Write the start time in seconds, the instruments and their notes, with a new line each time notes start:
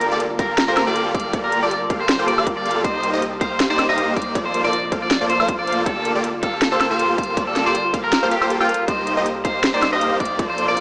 Already playing: sub bass G1, ambient pad G3 F4 A4 A#4
0.01 synth arpeggio sound A#4, closed hi-hat
0.12 supersaw synth A#3 F4 G4 A4 D5, synth arpeggio sound A4, synth pluck D5
0.20 synth arpeggio sound A#4, closed hi-hat
0.30 synth arpeggio sound F4
0.39 supersaw synth A#3 F4 G4 A4 F5, synth arpeggio sound A#4, clean electric guitar A#4, synth pluck F5, kick, closed hi-hat
0.49 synth arpeggio sound A#4
0.58 synth arpeggio sound F4, snare, closed hi-hat
0.68 supersaw synth A#3 F4 G4 A4 C5, clean electric guitar A#4, synth pluck C5, synth arpeggio sound F5
0.77 synth arpeggio sound A#4, snare, closed hi-hat, high woodblock
0.87 supersaw synth A#3 F4 G4 A4 F5, synth arpeggio sound A4, clean electric guitar D5, synth pluck F5
0.96 synth arpeggio sound A#4, closed hi-hat
1.06 synth arpeggio sound F4
1.15 supersaw synth A#3 F4 G4 A4 F5, synth arpeggio sound A#4, clean electric guitar D5, synth pluck F5, kick, closed hi-hat
1.20 closed hi-hat
1.25 synth arpeggio sound A#4
1.33 supersaw synth A#3 F4 G4 A4 D5, synth arpeggio sound F4, synth pluck D5, kick, closed hi-hat
1.44 clean electric guitar A#4, synth arpeggio sound F5
1.52 synth arpeggio sound A#4, closed hi-hat
1.63 supersaw synth A#3 F4 G4 A4 D5, synth arpeggio sound A4, synth pluck D5, clean electric guitar D5
1.71 synth arpeggio sound A#4, closed hi-hat
1.81 synth arpeggio sound F4
1.90 supersaw synth A#3 F4 G4 A4 F5, synth arpeggio sound A#4, synth pluck F5, kick, closed hi-hat
2.00 synth arpeggio sound A#4, clean electric guitar C5
2.09 synth arpeggio sound F4, snare, closed hi-hat
2.19 supersaw synth A#3 F4 G4 A4 C5, synth pluck C5, synth arpeggio sound F5
2.28 synth arpeggio sound F4, clean electric guitar D5, closed hi-hat
2.38 supersaw synth A#3 F4 G4 A4 F5, synth arpeggio sound G4, synth pluck F5, high woodblock
2.47 synth arpeggio sound A#4, kick, closed hi-hat
2.57 synth arpeggio sound F4, clean electric guitar D5
2.65 supersaw synth A#3 F4 G4 A4 F5, synth arpeggio sound F5, synth pluck F5, closed hi-hat
2.71 closed hi-hat
2.76 synth arpeggio sound A4
2.84 sub bass C2, ambient pad C3 A#3 D#4, supersaw synth A#3 D#4 G4 C5 D#5, clean electric guitar C5, synth pluck D#5, kick, closed hi-hat
2.95 synth arpeggio sound A#5
3.03 synth arpeggio sound D#5, closed hi-hat
3.13 supersaw synth A#3 D#4 G4 C5 D#5, synth arpeggio sound C5, synth pluck D#5
3.22 synth arpeggio sound G4, closed hi-hat
3.33 synth arpeggio sound G4
3.41 supersaw synth A#3 D#4 G4 C5 F5, clean electric guitar C5, synth arpeggio sound D#5, synth pluck F5, kick, closed hi-hat
3.51 synth arpeggio sound D#5
3.60 synth arpeggio sound G4, snare, closed hi-hat
3.70 supersaw synth A#3 D#4 G4 C5 D5, clean electric guitar C5, synth pluck D5, synth arpeggio sound A#5
3.79 synth arpeggio sound D#5, snare, closed hi-hat, high woodblock
3.89 supersaw synth A#3 D#4 G4 C5 F5, synth arpeggio sound C5, clean electric guitar D#5, synth pluck F5
3.98 synth arpeggio sound G4, closed hi-hat
4.08 synth arpeggio sound G4
4.16 supersaw synth A#3 D#4 G4 C5 F5, clean electric guitar D5, synth arpeggio sound D#5, synth pluck F5, kick, closed hi-hat
4.22 closed hi-hat
4.27 synth arpeggio sound D#5
4.35 sub bass A#1, ambient pad A3 D4, supersaw synth A#3 F4 A4 C5 D5, synth arpeggio sound F4, synth pluck D5, kick, closed hi-hat
4.45 clean electric guitar C5, synth arpeggio sound F5
4.54 synth arpeggio sound C5, closed hi-hat
4.64 supersaw synth A#3 F4 A4 C5 D5, synth arpeggio sound A#4, synth pluck D5, clean electric guitar D5
4.73 synth arpeggio sound F4, closed hi-hat
4.83 synth arpeggio sound F4
4.92 supersaw synth A#3 F4 A4 C5 F5, synth arpeggio sound C5, synth pluck F5, kick, closed hi-hat
5.02 synth arpeggio sound C5, clean electric guitar D5
5.11 synth arpeggio sound F4, snare, closed hi-hat
5.21 supersaw synth A#3 F4 A4 C5 D5, synth pluck D5, synth arpeggio sound F5
5.30 synth arpeggio sound C5, clean electric guitar C5, closed hi-hat
5.40 supersaw synth A#3 F4 A4 C5 F5, synth arpeggio sound A#4, synth pluck F5, high woodblock
5.48 synth arpeggio sound F4, kick, closed hi-hat
5.59 synth arpeggio sound F4, clean electric guitar D5
5.67 supersaw synth A#3 F4 A4 C5 F5, synth arpeggio sound C5, synth pluck F5, closed hi-hat
5.72 closed hi-hat
5.78 synth arpeggio sound C5
5.86 sub bass G1, ambient pad G3 F4 A4 A#4, supersaw synth A#3 F4 G4 A4 D5, synth arpeggio sound F4, clean electric guitar A4, synth pluck D5, kick, closed hi-hat
5.96 synth arpeggio sound F5
6.05 synth arpeggio sound A#4, closed hi-hat
6.15 supersaw synth A#3 F4 G4 A4 D5, synth arpeggio sound A4, synth pluck D5
6.24 synth arpeggio sound F4, closed hi-hat
6.34 synth arpeggio sound F4
6.43 supersaw synth A#3 F4 G4 A4 F5, clean electric guitar A4, synth arpeggio sound A#4, synth pluck F5, kick, closed hi-hat
6.53 synth arpeggio sound A#4
6.62 synth arpeggio sound F4, snare, closed hi-hat
6.72 supersaw synth A#3 F4 G4 A4 C5, clean electric guitar A4, synth pluck C5, synth arpeggio sound F5
6.81 synth arpeggio sound A#4, snare, closed hi-hat, high woodblock
6.91 supersaw synth A#3 F4 G4 A4 F5, synth arpeggio sound A4, clean electric guitar C5, synth pluck F5
6.99 synth arpeggio sound F4, closed hi-hat
7.10 synth arpeggio sound F4
7.18 supersaw synth A#3 F4 G4 A4 F5, synth arpeggio sound A#4, clean electric guitar C5, synth pluck F5, kick, closed hi-hat
7.23 closed hi-hat
7.28 synth arpeggio sound A#4
7.37 supersaw synth A#3 F4 G4 A4 D5, synth arpeggio sound F4, synth pluck D5, kick, closed hi-hat
7.47 clean electric guitar A4, synth arpeggio sound F5
7.56 synth arpeggio sound A#4, snare, closed hi-hat
7.66 supersaw synth A#3 F4 G4 A4 D5, synth arpeggio sound A4, clean electric guitar C5, synth pluck D5
7.75 synth arpeggio sound F4, closed hi-hat
7.85 synth arpeggio sound F4
7.94 supersaw synth A#3 F4 G4 A4 F5, synth arpeggio sound A#4, synth pluck F5, kick, closed hi-hat
8.04 clean electric guitar A#4, synth arpeggio sound A#4
8.13 synth arpeggio sound F4, snare, closed hi-hat
8.23 supersaw synth A#3 F4 G4 A4 C5, synth pluck C5, synth arpeggio sound F5
8.31 supersaw synth A#3 F4 G4 A4 F5, clean electric guitar G4, synth arpeggio sound A#4, synth pluck F5, closed hi-hat
8.42 supersaw synth A#3 F4 G4 A4 C5, synth arpeggio sound A4, synth pluck C5, high woodblock
8.50 synth arpeggio sound F4, closed hi-hat
8.61 supersaw synth A#3 F4 G4 A4 G5, clean electric guitar F4, synth arpeggio sound F4, synth pluck G5, high woodblock
8.69 synth arpeggio sound A#4, closed hi-hat
8.74 closed hi-hat
8.79 synth arpeggio sound A#4
8.88 sub bass C2, ambient pad C3 A#3 D#4, supersaw synth A#3 D#4 G4 C5 D#5, synth arpeggio sound G4, clean electric guitar C5, synth pluck D#5, kick, closed hi-hat
8.98 synth arpeggio sound A#5
9.07 synth arpeggio sound D#5, closed hi-hat
9.17 supersaw synth A#3 D#4 G4 C5 D#5, synth arpeggio sound C5, synth pluck D#5
9.26 synth arpeggio sound G4, closed hi-hat
9.36 synth arpeggio sound G4
9.45 supersaw synth A#3 D#4 G4 C5 F5, synth arpeggio sound C5, clean electric guitar C5, synth pluck F5, kick, closed hi-hat
9.55 synth arpeggio sound D#5
9.64 synth arpeggio sound G4, snare, closed hi-hat
9.74 supersaw synth A#3 D#4 G4 C5 D5, clean electric guitar C5, synth pluck D5, synth arpeggio sound A#5
9.82 synth arpeggio sound D#5, snare, closed hi-hat, high woodblock
9.93 supersaw synth A#3 D#4 G4 C5 F5, synth arpeggio sound C5, clean electric guitar D#5, synth pluck F5
10.01 synth arpeggio sound G4, closed hi-hat
10.12 synth arpeggio sound G4
10.20 supersaw synth A#3 D#4 G4 C5 F5, synth arpeggio sound C5, clean electric guitar D5, synth pluck F5, kick, closed hi-hat
10.25 closed hi-hat
10.30 synth arpeggio sound D#5
10.39 sub bass A#1, supersaw synth A#3 F4 A4 C5 D5, synth arpeggio sound F4, synth pluck D5, kick, closed hi-hat
10.49 clean electric guitar C5, synth arpeggio sound F5
10.58 synth arpeggio sound C5, closed hi-hat
10.68 supersaw synth A#3 F4 A4 C5 D5, synth arpeggio sound A#4, synth pluck D5, clean electric guitar D5
10.77 synth arpeggio sound F4, closed hi-hat